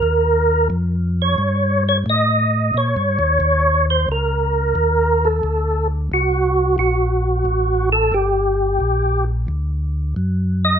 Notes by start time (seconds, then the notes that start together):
Already playing: A#4
0.02 D#2
0.70 F2
1.22 C#5
1.38 G2
1.89 C#5
2.06 A2 D#5
2.74 A#2 C#5
2.96 G2
3.19 D#2
3.40 D#2
3.90 C5
4.08 C#2 A#4
4.75 D#2
5.25 A4
5.43 D2
6.12 C2 F#4
6.78 A#1 F#4
7.45 A1
7.92 A4
8.12 G1 G4
8.80 A#1
9.48 D2
10.16 F#2
10.65 D#5